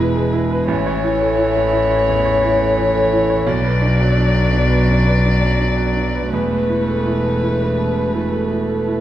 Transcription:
0.00 0.71 E1 medium
0.00 0.71 B2 medium
0.00 0.16 G#3 medium
0.00 0.64 G#3 medium
0.00 0.33 E4 medium
0.00 0.51 B4 medium
0.00 0.64 B4 medium
0.16 0.44 G#3 medium
0.33 0.61 E4 medium
0.51 0.69 B4 medium
0.67 2.03 A1 medium
0.67 3.49 A1 medium
0.67 3.49 E3 medium
0.67 3.49 C#5 medium
0.86 1.14 C#5 medium
1.04 1.31 E4 medium
1.21 1.49 A3 medium
1.38 1.66 E4 medium
1.56 1.83 A3 medium
1.73 2.01 E4 medium
1.90 2.18 C#5 medium
2.08 2.36 E2 medium
2.25 2.53 C#5 medium
2.43 2.71 E4 medium
2.60 2.88 A3 medium
2.78 3.06 E4 medium
2.95 3.23 A3 medium
3.13 3.41 E4 medium
3.30 3.47 C#5 medium
3.47 4.84 B1 medium
3.47 6.33 B1 medium
3.47 6.31 F#3 medium
3.47 6.31 D5 medium
3.65 3.93 B4 medium
3.82 4.10 D4 medium
4.01 4.29 F#3 medium
4.17 4.46 D4 medium
4.35 4.63 F#3 medium
4.52 4.81 D4 medium
4.69 4.98 B4 medium
4.88 5.16 F#2 medium
5.06 5.34 B4 medium
5.23 5.52 D4 medium
5.42 5.70 F#3 soft
5.59 5.88 D4 medium
5.77 6.06 F#3 medium
5.96 6.25 D4 medium
6.15 6.33 B4 soft
6.31 9.01 E1 medium
6.31 7.75 E2 medium
6.31 8.98 A3 medium
6.31 8.98 B4 medium
6.51 6.80 B4 medium
6.69 6.98 E4 soft
6.88 7.17 A3 soft
7.06 7.35 E4 medium
7.25 7.53 A3 soft
7.43 7.71 E4 soft
7.60 7.89 B4 medium
7.78 8.07 B2 soft
7.96 8.25 B4 medium
8.14 8.43 E4 soft
8.32 8.61 A3 soft
8.51 8.80 E4 soft
8.69 8.98 A3 soft
8.87 9.01 E4 medium

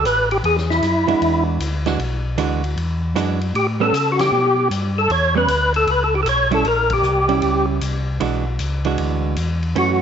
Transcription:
0.04 0.42 A1 medium
0.04 0.29 B4 loud
0.04 hi-hat pedal medium
0.04 ride medium
0.31 0.38 G4 medium
0.31 ride soft
0.43 0.81 E2 medium
0.43 0.57 G#4 medium
0.43 ride medium
0.58 snare soft
0.70 1.44 E4 medium
0.70 snare soft
0.82 1.06 F#2 medium
0.82 hi-hat pedal soft
0.82 ride medium
1.07 1.14 F#2 soft
1.07 1.57 E3 soft
1.07 1.58 G#3 medium
1.07 1.58 D4 medium
1.07 1.58 F#4 medium
1.07 ride soft
1.21 1.59 E2 medium
1.21 ride medium
1.59 1.97 D2 medium
1.59 hi-hat pedal medium
1.59 ride medium
1.86 1.98 E3 medium
1.86 1.98 G#3 medium
1.86 1.98 D4 medium
1.86 1.99 F#4 medium
1.86 snare soft
1.86 ride soft
1.99 2.37 B1 medium
1.99 ride medium
2.37 2.75 D2 medium
2.37 2.61 E3 medium
2.37 2.61 G#3 medium
2.37 2.61 D4 medium
2.37 2.62 F#4 medium
2.37 hi-hat pedal soft
2.37 ride medium
2.64 ride soft
2.76 3.14 E2 medium
2.76 ride soft
3.15 3.53 F#2 medium
3.15 3.39 E3 medium
3.15 3.39 G#3 medium
3.15 3.39 D4 medium
3.15 3.39 F#4 medium
3.15 hi-hat pedal medium
3.15 ride medium
3.41 ride soft
3.54 3.92 A2 medium
3.54 3.67 G4 medium
3.54 ride medium
3.80 3.92 G3 medium
3.80 3.93 B3 medium
3.80 3.93 C#4 medium
3.80 4.11 A4 medium
3.93 4.31 C#3 medium
3.93 hi-hat pedal medium
3.93 ride medium
4.12 4.20 F#4 medium
4.19 4.68 G4 medium
4.19 snare medium
4.19 ride medium
4.32 4.70 B2 medium
4.70 5.08 G2 medium
4.70 hi-hat pedal medium
4.70 ride medium
4.98 5.11 A4 medium
5.09 5.47 E2 medium
5.09 5.35 C#5 loud
5.09 ride medium
5.35 5.47 G3 medium
5.35 5.48 B3 medium
5.35 5.48 C#4 medium
5.35 5.73 B4 medium
5.48 5.86 D2 medium
5.48 hi-hat pedal medium
5.48 ride medium
5.74 5.91 A4 medium
5.74 ride soft
5.87 6.25 C#2 medium
5.87 ride medium
5.91 6.03 B4 medium
6.04 6.14 A4 medium
6.15 6.21 G4 medium
6.23 6.63 B1 medium
6.23 6.28 A4 medium
6.23 hi-hat pedal medium
6.23 ride medium
6.29 6.52 C#5 medium
6.51 6.64 G3 medium
6.51 6.64 C#4 medium
6.51 6.64 E4 medium
6.51 6.67 A4 medium
6.51 ride soft
6.65 7.03 A#1 medium
6.65 6.93 A#4 medium
6.65 ride soft
6.90 7.66 G4 medium
6.90 kick medium
6.90 ride medium
7.03 7.41 C2 medium
7.03 hi-hat pedal soft
7.29 7.79 G3 medium
7.29 7.79 C#4 medium
7.29 7.80 E4 medium
7.29 ride soft
7.42 7.81 C#2 medium
7.42 ride medium
7.81 8.19 C2 medium
7.81 hi-hat pedal medium
7.81 ride medium
8.20 8.58 B1 medium
8.20 8.43 E3 medium
8.20 8.44 G#3 medium
8.20 8.44 D4 medium
8.20 8.44 F#4 medium
8.20 ride medium
8.59 8.97 C#2 medium
8.59 hi-hat pedal medium
8.59 ride medium
8.85 9.35 E3 medium
8.85 9.35 G#3 medium
8.85 9.35 D4 medium
8.85 9.35 F#4 medium
8.85 ride soft
8.98 9.36 D2 medium
8.98 ride medium
9.36 9.75 E2 medium
9.36 hi-hat pedal soft
9.36 ride medium
9.63 ride soft
9.76 10.02 F#2 medium
9.76 9.99 E3 medium
9.76 9.99 A3 medium
9.76 9.99 C#4 medium
9.76 10.01 F#4 medium
9.76 ride medium

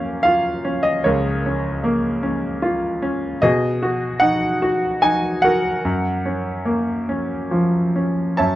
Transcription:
0.00 1.01 F#2 soft
0.00 1.01 A#3 soft
0.00 0.65 C#4 soft
0.00 1.05 A#4 soft
0.00 1.04 C#5 medium
0.00 0.21 F5 medium
0.23 1.80 F4 soft
0.23 0.85 F5 medium
0.65 1.44 C#4 soft
0.83 1.03 D#5 medium
1.04 3.38 C#2 medium
1.04 2.58 A#4 soft
1.04 2.57 C#5 medium
1.46 2.21 C#4 soft
1.84 3.38 A#3 soft
2.23 3.01 C#4 soft
2.62 3.40 F4 soft
3.02 3.41 C#4 soft
3.42 5.80 B2 medium
3.42 4.57 G#4 medium
3.42 4.17 D#5 medium
3.82 4.60 F#4 soft
4.20 5.01 D#4 soft
4.20 5.03 F#5 medium
4.62 5.43 F#4 medium
5.02 5.82 D#4 soft
5.02 5.44 G#5 medium
5.42 5.83 F#4 soft
5.42 7.92 A#4 medium
5.42 7.91 F#5 medium
5.85 8.35 F#2 medium
6.25 7.07 C#4 soft
6.65 8.35 A#3 soft
7.09 7.94 C#4 soft
7.51 8.36 F3 soft
7.96 8.38 C#4 soft
8.37 8.55 F#2 soft
8.37 8.55 C#5 soft
8.37 8.55 E5 soft
8.37 8.55 A5 medium

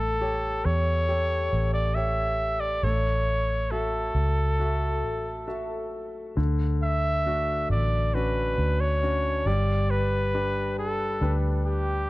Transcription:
0.00 0.61 A1 loud
0.00 2.80 A3 medium
0.00 0.67 A4 loud
0.21 1.06 G4 medium
0.21 1.06 A4 soft
0.21 1.06 C#5 medium
0.65 1.48 E2 medium
0.65 1.73 C#5 loud
1.09 1.93 G4 medium
1.09 1.94 A4 soft
1.09 1.94 C#5 medium
1.53 2.80 A1 medium
1.74 1.96 D5 loud
1.94 2.81 G4 medium
1.94 2.81 A4 soft
1.94 2.81 C#5 medium
1.94 2.62 E5 loud
2.60 2.85 D5 loud
2.83 4.11 A1 medium
2.83 6.34 A3 medium
2.83 3.72 C#5 loud
3.71 4.57 F#4 soft
3.71 5.93 A4 medium
3.71 4.57 A4 soft
3.71 4.58 E5 medium
4.15 5.04 C#2 medium
4.60 5.46 F#4 soft
4.60 5.46 A4 soft
4.60 5.46 E5 medium
5.04 6.34 A1 medium
5.47 6.34 F#4 soft
5.47 6.35 A4 soft
5.47 6.35 E5 medium
6.37 7.71 D2 medium
6.37 9.42 D3 medium
6.83 7.67 E5 loud
7.26 8.12 A3 soft
7.26 8.12 D4 soft
7.26 8.12 F#4 medium
7.70 8.54 A1 medium
7.70 8.16 D5 loud
8.14 9.00 C#4 soft
8.14 9.00 D4 soft
8.14 9.01 F#4 medium
8.14 8.82 B4 loud
8.58 9.42 D2 medium
8.80 9.48 C#5 loud
9.03 9.45 C#4 soft
9.03 9.46 D4 soft
9.03 9.46 F#4 medium
9.46 11.17 G1 loud
9.46 12.10 G3 medium
9.46 9.92 D5 loud
9.90 10.78 B4 loud
10.34 11.19 D4 medium
10.34 11.19 G4 soft
10.34 11.19 B4 medium
10.79 11.35 A4 medium
11.21 12.05 D2 medium
11.21 12.06 D4 medium
11.21 12.07 G4 soft
11.21 12.07 B4 medium
11.65 12.10 G4 medium

